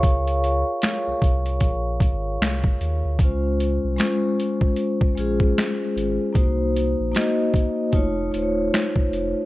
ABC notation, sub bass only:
X:1
M:4/4
L:1/16
Q:"Swing 16ths" 1/4=76
K:Db
V:1 name="Sub bass" clef=bass
D,,3 z2 C,, C,,2 B,,,2 A,,,2 C,, z E,, =D,, | D,,3 C,, z6 B,,,2 z2 A,,, z | C,,3 B,,, z4 F,,,2 E,,,2 z2 F,,, z |]